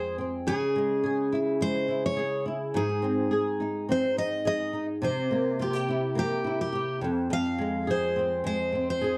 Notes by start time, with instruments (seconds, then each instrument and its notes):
Already playing: nylon-string guitar F2 G#3 C4 G#4, steel-string acoustic guitar C5
0.18 nylon-string guitar C4
0.47 nylon-string guitar C#3, steel-string acoustic guitar G#4
0.76 nylon-string guitar G#3
1.04 nylon-string guitar G#4
1.32 nylon-string guitar E4
1.61 nylon-string guitar G#3, steel-string acoustic guitar C5
1.88 nylon-string guitar E4
2.06 steel-string acoustic guitar C#5
2.16 nylon-string guitar G#4
2.46 nylon-string guitar E4
2.74 nylon-string guitar G#2, steel-string acoustic guitar G#4
3.02 nylon-string guitar C4
3.31 nylon-string guitar G#4
3.60 nylon-string guitar D#4
3.89 nylon-string guitar C4, steel-string acoustic guitar C5
4.17 nylon-string guitar D#4, steel-string acoustic guitar D#5
4.45 nylon-string guitar G#4, steel-string acoustic guitar D#5
4.73 nylon-string guitar D#4
5.02 nylon-string guitar C3, steel-string acoustic guitar C5
5.31 nylon-string guitar A#3
5.59 nylon-string guitar F4, steel-string acoustic guitar G4
5.73 nylon-string guitar G4
5.88 nylon-string guitar E4
6.15 nylon-string guitar A#3, steel-string acoustic guitar G4
6.44 nylon-string guitar E4
6.61 steel-string acoustic guitar G4
6.73 nylon-string guitar G4
7.01 nylon-string guitar F2
7.30 nylon-string guitar F2, steel-string acoustic guitar F5
7.58 nylon-string guitar G#3
7.87 nylon-string guitar G#4, steel-string acoustic guitar C5
8.16 nylon-string guitar C4
8.44 nylon-string guitar G#3, steel-string acoustic guitar C5
8.72 nylon-string guitar C4
8.90 steel-string acoustic guitar C5
9.01 nylon-string guitar G#4